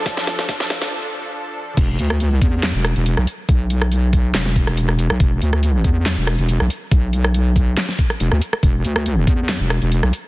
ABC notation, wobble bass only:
X:1
M:4/4
L:1/16
Q:"Swing 16ths" 1/4=140
K:Flyd
V:1 name="Wobble bass" clef=bass
z16 | E,,,2 D,,4 E,,3 E,,,2 E,,,2 B,,, z2 | B,,,8 E,,,3 E,,,4 B,,, | E,,,2 D,,4 E,,3 E,,,2 E,,,2 B,,, z2 |
B,,,8 z4 E,,, D,, z2 | E,,,2 D,,4 E,,3 E,,,2 E,,,2 B,,, z2 |]